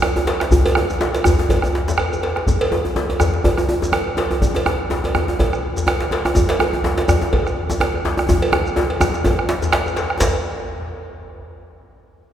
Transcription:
0.02 bombo rim, cowbell, djembe tone
0.16 djembe tone
0.27 cowbell, djembe slap
0.40 bombo rim, djembe slap
0.51 bombo low, djembe bass, shekere
0.65 bombo rim, cowbell, djembe slap, djembe bass
0.75 bombo rim, djembe tone
0.89 bombo rim, djembe tone, shekere
1.01 bombo rim, djembe slap
1.15 cowbell, djembe slap, shekere
1.24 bombo rim, djembe slap, djembe bass, shekere
1.39 djembe slap, djembe bass
1.49 bombo low, cowbell, djembe slap, djembe tone, shekere
1.62 bombo rim, djembe tone, shekere
1.74 bombo rim, djembe slap
1.87 bombo rim, djembe slap, djembe bass, shekere
1.98 bombo rim, cowbell, djembe bass
2.13 djembe bass, shekere
2.23 cowbell, djembe slap
2.36 bombo rim, djembe slap
2.47 bombo rim, bombo low, djembe bass, shekere
2.61 cowbell, djembe slap
2.72 djembe slap, djembe tone
2.85 djembe tone
2.96 bombo rim, djembe slap, djembe tone
3.10 cowbell, djembe tone
3.20 bombo rim, djembe tone, djembe bass, shekere
3.34 djembe slap
3.44 bombo rim, bombo low, cowbell, djembe tone
3.57 bombo rim, djembe tone, shekere
3.69 djembe slap, djembe tone
3.82 djembe slap, djembe tone, djembe bass, shekere
3.92 bombo rim, cowbell, djembe tone
4.17 cowbell, djembe slap, djembe tone
4.31 djembe tone
4.42 bombo rim, bombo low, djembe tone, djembe bass, shekere
4.55 cowbell, djembe slap, djembe tone
4.66 bombo rim, djembe slap, djembe tone
4.90 bombo rim, djembe slap, djembe tone
5.04 cowbell, djembe tone
5.15 bombo rim, djembe tone, djembe bass
5.28 djembe slap, djembe tone
5.39 bombo rim, bombo low, cowbell, djembe tone
5.53 bombo rim, shekere
5.64 djembe slap
5.77 djembe slap, djembe bass, shekere
5.87 bombo rim, cowbell, djembe tone
6.00 djembe slap, djembe tone
6.11 cowbell, djembe slap, djembe tone
6.25 bombo rim, djembe tone
6.35 bombo rim, bombo low, djembe tone, djembe bass, shekere
6.49 cowbell, djembe slap
6.60 bombo rim, djembe slap, djembe tone
6.73 djembe tone
6.84 bombo rim, djembe slap, djembe tone
6.98 cowbell, djembe slap
7.08 bombo rim, djembe tone, djembe bass, shekere
7.21 djembe slap, djembe tone
7.33 bombo rim, bombo low, cowbell, djembe tone
7.47 bombo rim, shekere
7.57 djembe slap
7.70 djembe slap, djembe tone, djembe bass, shekere
7.80 bombo rim, cowbell, djembe tone
7.94 djembe tone
8.05 djembe slap, djembe tone
8.17 bombo rim, djembe tone
8.29 bombo low, djembe slap, djembe tone, djembe bass, shekere
8.42 bombo rim, cowbell
8.52 bombo rim, djembe slap, djembe tone
8.66 bombo rim, shekere
8.76 djembe slap, djembe tone
8.90 cowbell, djembe slap
9.01 bombo rim, djembe tone, djembe bass, shekere
9.14 djembe slap, shekere
9.24 bombo rim, bombo low, cowbell, djembe tone, shekere
9.39 bombo rim
9.49 djembe slap, shekere
9.62 bombo rim, djembe slap, djembe bass, shekere
9.72 bombo rim, cowbell, djembe slap
9.86 djembe tone, shekere
9.96 cowbell, djembe slap, shekere
10.10 bombo rim
10.20 bombo low, cowbell, djembe slap, djembe bass, shekere

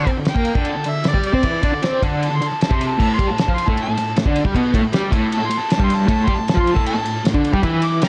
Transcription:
0.05 C4 C5, kick, ride
0.16 D3
0.25 snare, ride
0.29 G5
0.34 A#3 A#4, kick
0.45 ride
0.54 D3 D4, kick
0.65 A5, ride
0.76 D3
0.84 D3, ride
0.90 E5
1.04 D3, snare, ride
1.08 D5
1.13 G3 G4, kick
1.23 D5, ride
1.33 C4 C5, kick
1.43 E3 E4, kick, ride
1.62 D3 D4, kick, ride
1.73 D3
1.82 C4 C5, snare, ride
2.02 D3 D4, kick, ride
2.23 A5, ride
2.30 D3
2.37 C6
2.41 D3, ride
2.48 A5, muted overdriven electric guitar stroke
2.61 A5, snare, ride
2.69 C3 C4, kick
2.75 C6
2.81 ride
2.87 A5
2.98 A2 A3 A5, kick, crash
3.14 C6
3.19 G3 G4, kick, ride
3.28 A2 A5
3.38 A5, snare, ride
3.48 F3 F4, kick
3.54 C6
3.58 ride
3.67 A2 A3 A5, kick
3.77 ride
3.82 A5
3.88 A2
3.97 A2, ride
4.16 A2, snare, ride
4.26 D3 D4, kick
4.36 ride
4.45 G3 G4, kick
4.55 B2 B3, kick, ride
4.74 A2 A3, kick, ride
4.83 A2
4.92 G3 G4, snare, ride
5.11 A2 A3, kick, ride
5.32 A5, ride
5.38 A2
5.47 A2 C6
5.51 ride
5.59 A5, muted overdriven electric guitar stroke
5.70 A5, snare, ride
5.77 G2 G3, kick
5.84 C6
5.90 ride
5.96 A5
6.06 A2 A3 A5, kick, ride
6.24 G3 C6, kick, ride
6.28 G4
6.35 A2 A5
6.48 A5, snare, ride
6.55 F3 F4, kick
6.60 C6
6.67 ride
6.73 A2 A3 A5, kick
6.86 A5, ride
6.95 A2
7.04 A2, ride
7.24 A2, snare, ride
7.34 D3 D4, kick
7.45 ride
7.52 G3 G4, kick
7.62 E3 E4, kick, ride
7.82 D6, ride
8.02 G3 G4 C6, snare, ride

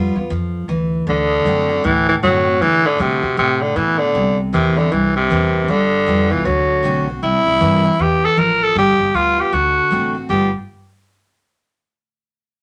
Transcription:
Already playing: F2 G3 B3 F4
0.16 E2 B3 F4
0.30 F2 F3
0.68 D2 E3
1.07 D2 D3
1.45 F#2 D3 A3 C4 F#4
1.69 C4 F#4
1.84 D2 A2 E3
2.09 E3
2.23 F#2 D3 F#3 A3 C4 F#4
2.46 C4 F#4
2.61 A2 D3 E3
2.86 D3
2.99 C3 D3 A3 C4 F#4
3.22 B2 C4 F#4
3.37 A2 C3
3.61 D3
3.76 A2 B2 E3
3.99 D3
4.14 C2 C3
4.53 E2 C3 E3 A#3 C4 E4
4.77 D3 C4 E4
4.91 C2 G2 E3
5.16 C3
5.30 E2 E3 A#3 C4 E4
5.68 G1 D3 G3
6.06 F2 G3 B3 F4
6.30 C2 E3 B3 F4
6.45 D2 D3 F#3
6.83 B1 D3 A3 C4 F#4
7.07 C4 F#4
7.23 C2 C3 E4
7.47 C2
7.60 G2 E3 A#3 C4 E4
7.84 C4 E4
7.99 E2 E3 G4
8.25 A4
8.37 A1 F3 A#4
8.63 A4
8.75 G1 G3 G4
9.00 G1
9.14 D2 G3 B3 F4
9.37 B3 F4 G4
9.52 D2 D3 F#4
9.90 A1 D3 A3 C4 F#4
10.15 C4 F#4
10.29 G1 G3 B3 F4 G4

